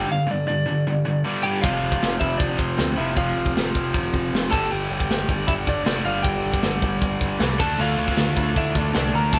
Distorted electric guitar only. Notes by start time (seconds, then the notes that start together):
0.08 G2 D3
0.27 G2 D3
0.47 G2 D3
0.66 G2 D3
0.87 G2 D3
1.05 G2 D3
1.24 G2 D3 G3
1.44 G2 D3 G3
1.62 F2 C3 F3
2.96 F2 C3 F3
3.16 F2 C3 F3
4.51 G2 D3 G3
5.84 G2 D3 G3
6.03 G2 D3 G3
7.39 G2 D3 G3
7.59 D3 A3 D4
8.94 D3 A3 D4
9.13 D3 A3 D4